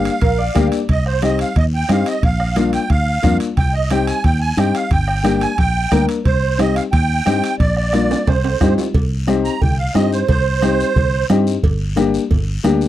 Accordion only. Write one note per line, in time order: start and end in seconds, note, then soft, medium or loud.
0.00 0.68 F5 medium
0.90 1.05 D#5 medium
1.07 1.22 C5 medium
1.24 1.39 D#5 medium
1.41 1.56 F5 medium
1.58 1.65 D#5 medium
1.75 1.91 G5 medium
1.91 2.07 F5 medium
2.08 2.23 D#5 medium
2.25 2.71 F5 medium
2.74 2.89 G5 medium
2.91 3.37 F5 loud
3.58 3.75 G5 loud
3.74 3.90 D#5 medium
3.91 4.06 G5 loud
4.07 4.23 G#5 medium
4.24 4.40 G5 loud
4.41 4.58 G#5 medium
4.58 4.75 G5 medium
4.75 4.90 F5 medium
4.92 5.43 G5 loud
5.42 5.57 G#5 medium
5.59 6.05 G5 loud
6.26 6.60 C5 medium
6.59 6.75 D#5 medium
6.76 6.83 F5 medium
6.92 7.56 G5 loud
7.60 7.75 D5 medium
7.77 8.29 D5 medium
8.28 8.74 C5 medium
9.45 9.61 A#5 medium
9.62 9.78 G5 medium
9.78 9.95 F5 medium
9.95 10.11 D#5 medium
10.12 10.27 C5 medium
10.29 11.27 C5 loud